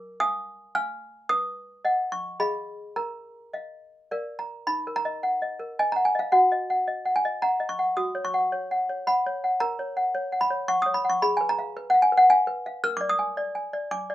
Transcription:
Already playing: A#4 D6
0.20 F5 G#5 D#6
0.75 F5 G#5 F6
1.29 B4 D#6
1.85 D#5 F#5
2.12 C#6
2.40 G#4 D#5 F5 B5
2.96 A#4 A#5
3.53 D#5 F5
4.11 A#4 D5 F5
4.39 A#5
4.67 D#4 B5
4.87 A#4
4.96 A#5
5.05 D#5
5.23 F#5
5.42 D#5
5.59 A#4
5.79 D#5 G#5
5.92 F#5 A#5
6.05 G#5
6.15 D#5
6.19 F5
6.32 F#4 F#5
6.52 D#5
6.70 F#5
6.88 D#5
7.05 F#5
7.16 G#5
7.25 D#5
7.42 F#5 A#5
7.60 D#5
7.69 C#6
7.79 F#5
7.97 F#4 D#6
8.15 C#5
8.25 C#6
8.34 F#5
8.52 C#5
8.71 F#5
8.89 C#5
9.07 F#5 B5
9.26 C#5
9.44 F#5
9.60 A#4 A#5
9.79 C#5
9.97 F#5
10.15 C#5
10.32 F#5
10.41 B5
10.50 C#5
10.68 F#5 C#6
10.82 D#6
10.86 C#5
10.94 B5
11.05 F#5
11.10 C#6
11.22 G#4 B5
11.37 B4 G#5
11.49 A#5
11.59 F5
11.77 B4
11.90 F#5
11.94 F5
12.02 G#5
12.12 B4
12.17 F#5
12.30 F5 G#5
12.47 B4
12.66 F5
12.84 A#4 F6
12.97 D5 D6
13.09 D#6
13.19 G#5
13.37 D5
13.55 G#5
13.73 D5
13.91 G#5 D6
14.10 D5

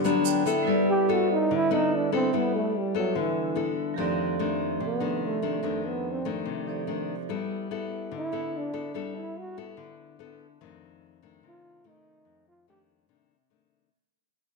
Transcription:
Already playing: D3 G3 A4 B4 D5 F#5
0.04 F#3 B3 D4 B5, shaker
0.25 G5, shaker
0.46 B3 E4 A4, shaker
0.63 G3 E4 A4
0.67 G3 B4 D5
0.90 G4
1.09 B3 E4 A4
1.13 F#4
1.32 D#4
1.51 D3
1.56 E4
1.71 B3 D#4 E4 A4
1.96 D4
2.12 B3 C4 E4 A4
2.33 G3 B3 E4 A4
2.37 B3
2.55 A3
2.78 G3
2.95 F#3 B3 E4 A4
3.15 D3 E3
3.55 B3 E4 A4
3.94 F2 D#3 F3 A3 G4 A4
3.99 D4 D5 C6
4.39 D#3 A3 D4
4.80 C3
4.85 B3
5.00 D#3 A3 D4
5.26 A3
5.42 D#3 A3 D4
5.63 F2 D#3 A3 D4
5.87 B3
6.11 C4
6.25 D#3 A3 D4
6.45 C3
6.66 F3 D#4 G4 A4 C5 D5
6.87 D#3 A3 D4
7.29 G3 B3 E4 A4
7.71 B3 E4 A4
8.11 D3
8.17 E4
8.32 B3 E4 A4
8.57 D4
8.73 B3 E4 A4
8.94 G3 B3 E4 A4
9.16 E4
9.39 F#4
9.57 B3 E4 A4
9.77 D3
10.19 B3 E4 A4
10.61 F2 D#3 A3 D4
11.23 D#3 A3 D4
11.43 C3
11.48 F4
11.84 D#3 A3
11.88 D#4
12.25 F2
12.48 F4
12.68 D#3 A3 D4 G4
13.09 C3 D#3 A3 D4
13.50 D#3 A3 D4

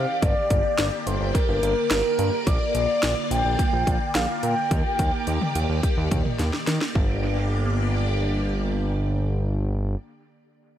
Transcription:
Already playing: D#3 C4 G4 D5 F5
0.22 G1 D3 A#3 D5, kick, closed hi-hat
0.50 G1, kick, closed hi-hat
0.78 G1, snare, closed hi-hat
1.06 G1 C5, closed hi-hat
1.21 G1
1.35 A#4, kick, closed hi-hat
1.49 G1
1.63 G1, closed hi-hat
1.91 G1 A#4, snare, closed hi-hat
2.19 G2, closed hi-hat
2.47 A#1 F4 D5, kick, closed hi-hat
2.75 A#1 D5, closed hi-hat
3.03 A#1, snare, closed hi-hat
3.31 A#1 G5, closed hi-hat
3.45 A#1
3.59 kick, closed hi-hat
3.73 A#1
3.87 A#1, kick, closed hi-hat
4.15 A#1 F5, snare, closed hi-hat
4.43 A#2 G5, closed hi-hat
4.71 D#2 D#3 G4, kick, closed hi-hat
4.99 D#2, kick, closed hi-hat
5.27 D#2, closed hi-hat
5.41 mid tom
5.55 D#2, closed hi-hat
5.69 D#2
5.83 kick, closed hi-hat
5.97 D#2
6.11 D#2, kick, closed hi-hat, mid tom
6.25 mid tom
6.39 D#2, snare, closed hi-hat
6.53 snare
6.67 D#3, snare, closed hi-hat
6.81 snare
6.95 G1 D3 A#3 G4 D5, kick

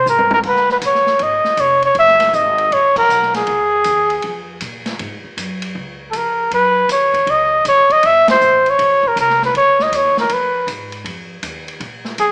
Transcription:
0.06 G#2 A#4, hi-hat pedal
0.18 high tom
0.31 A#4, high tom
0.43 C#2, kick, crash
0.48 B4
0.56 snare
0.69 B4, snare
0.81 A#1, hi-hat pedal, ride
0.86 C#5
0.95 snare
1.06 snare
1.19 G#1 D#5, ride
1.44 muted upright bass stroke, snare
1.57 F1 C#5, hi-hat pedal, ride
1.82 C#5, ride
1.95 F#1, ride
1.99 E5
2.08 snare
2.20 snare, ride
2.33 G#1 D#5, hi-hat pedal
2.58 ride
2.71 A#1 C#5, ride
2.96 A#4, kick, crash
3.09 B1, hi-hat pedal
3.22 snare
3.34 G#4, snare, ride
3.47 C#2, ride
3.84 D#2, hi-hat pedal, ride
4.10 ride
4.22 F2, ride
4.61 A#2, hi-hat pedal, ride
4.86 snare, ride
4.99 G#2, ride
5.24 muted upright bass stroke
5.37 F#2, hi-hat pedal, ride
5.62 ride
5.75 C#2
6.11 F2 A4, hi-hat pedal, ride
6.17 A#4
6.51 F#2 B4, ride
6.88 D#2 C#5, hi-hat pedal, ride
7.14 kick, ride
7.27 C#2 D#5, ride
7.65 A#1 C#5, hi-hat pedal, ride
7.89 D#5, muted upright bass stroke, kick, ride
8.03 G1 E5, ride
8.28 C5, snare, ride
8.41 A1, hi-hat pedal
8.66 C#5, ride
8.79 A#1, ride
9.03 kick
9.08 A#4
9.16 C2, hi-hat pedal, ride
9.20 A#4
9.30 snare
9.42 B4, snare
9.54 C#2 C#5, ride
9.79 D#5, snare
9.92 D#2 C#5, hi-hat pedal, ride
10.17 A#4, snare
10.29 F2 B4, ride
10.67 G#2, hi-hat pedal, ride
10.92 ride
11.04 F2, ride
11.43 D#2, hi-hat pedal, ride
11.68 ride
11.80 A#2, ride
12.05 snare
12.18 F2 G#4, hi-hat pedal, ride

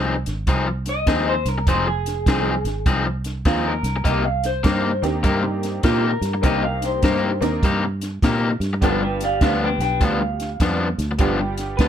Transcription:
Already playing: C2 F3 C4 D#4 G#4
0.26 G#1, snare, closed hi-hat
0.47 C2 F3 C4 D#4 G#4, kick, snare, closed hi-hat
0.67 muted overdriven electric guitar stroke
0.86 D#5, snare, closed hi-hat
1.06 D#2 F3 C4 D#4 G#4, kick, snare, closed hi-hat
1.29 C5
1.45 C2 A#4, snare, closed hi-hat
1.58 muted overdriven electric guitar stroke
1.66 F1 F3 C4 D#4 G#4 C5, kick, snare, closed hi-hat
1.87 G#4, muted overdriven electric guitar stroke
2.06 snare, closed hi-hat
2.26 C2 F3 C4 D#4 G#4, kick, snare, closed hi-hat
2.64 G#1, snare, closed hi-hat
2.86 C2 F3 C4 D#4 G#4, kick, snare, closed hi-hat
3.06 muted overdriven electric guitar stroke
3.24 snare, closed hi-hat
3.45 D#2 F3 C4 D#4 F4 G#4, kick, snare, closed hi-hat
3.67 A#4
3.83 C2, snare, closed hi-hat
3.96 muted overdriven electric guitar stroke
4.04 C2 C3 A#3 D#4 G4 D#5, kick, snare, closed hi-hat
4.24 F5, muted overdriven electric guitar stroke
4.44 C5, snare, closed hi-hat
4.63 G2 C3 A#3 D#4 G4, kick, snare, closed hi-hat
5.02 D#2 A#3 C4 D4 D#4 G4, snare, closed hi-hat
5.23 G2 C3 A#3 D#4 G4, kick, snare, closed hi-hat
5.43 muted overdriven electric guitar stroke
5.63 snare, closed hi-hat
5.83 A#2 C3 A#3 D#4 F4 G4, kick, snare, closed hi-hat
6.05 A#4
6.21 G2, snare, closed hi-hat
6.34 muted overdriven electric guitar stroke
6.41 C2 C3 A#3 C4 D4 D#4 G4, kick, snare, closed hi-hat
6.46 D#5
6.64 F5, muted overdriven electric guitar stroke
6.82 C5, snare, closed hi-hat
7.03 G2 C3 A#3 D#4 G4, kick, snare, closed hi-hat
7.41 D#2 A#3 C4 D4 D#4 A#4, snare, closed hi-hat
7.63 G2 C3 A#3 D#4 G4, kick, snare, closed hi-hat
7.85 muted overdriven electric guitar stroke
8.01 snare, closed hi-hat
8.22 A#2 C3 A#3 D#4 G4, kick, snare, closed hi-hat
8.60 G2, snare, closed hi-hat
8.73 muted overdriven electric guitar stroke
8.81 G1 G2 F3 G3 B3 D4 F4 G4 B4, kick, snare, closed hi-hat
9.02 D4 B4, muted overdriven electric guitar stroke
9.21 D5, snare, closed hi-hat
9.25 F5
9.41 D2 G2 F3 B3 D4 D5 F5, kick, snare, closed hi-hat
9.64 B4 G5
9.79 B1 B4 G5, snare, closed hi-hat
10.00 D2 G2 F3 B3 D4 F5, kick, snare, closed hi-hat
10.21 muted overdriven electric guitar stroke
10.40 snare, closed hi-hat
10.60 F2 G2 F3 B3 D4, kick, snare, closed hi-hat
10.98 D2, snare, closed hi-hat
11.11 muted overdriven electric guitar stroke
11.18 G1 G2 F3 G3 B3 D4 F4 G4, kick, snare, closed hi-hat
11.41 muted overdriven electric guitar stroke
11.58 snare, closed hi-hat
11.77 D2 G2 F3 B3 B4, kick, snare, closed hi-hat
11.81 D4

